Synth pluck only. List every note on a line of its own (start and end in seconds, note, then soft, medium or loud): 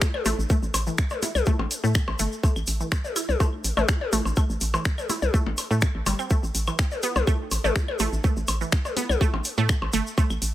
0.26 0.29 A3 loud
0.50 0.55 A3 medium
0.87 0.91 E3 medium
1.23 1.27 E4 medium
1.47 1.50 A3 loud
1.84 1.88 A3 loud
2.19 2.22 A3 loud
2.43 2.48 A3 medium
2.80 2.85 E3 medium
3.16 3.21 E4 medium
3.40 3.43 A3 loud
3.77 3.81 A3 loud
4.13 4.16 A3 loud
4.37 4.42 A3 medium
4.74 4.78 E3 medium
5.10 5.14 E4 medium
5.34 5.37 A3 loud
5.71 5.73 A3 loud
6.06 6.11 G3 medium
6.19 6.22 C4 medium
6.31 6.35 A3 medium
6.67 6.72 E3 medium
7.03 7.06 B3 loud
7.27 7.30 A3 loud
7.64 7.69 A3 loud
8.00 8.03 A3 loud
8.24 8.29 A3 medium
8.61 8.65 E3 medium
8.97 9.00 B3 loud
9.21 9.24 A3 loud
9.58 9.62 A3 loud
9.93 9.96 A3 loud
10.18 10.22 A3 medium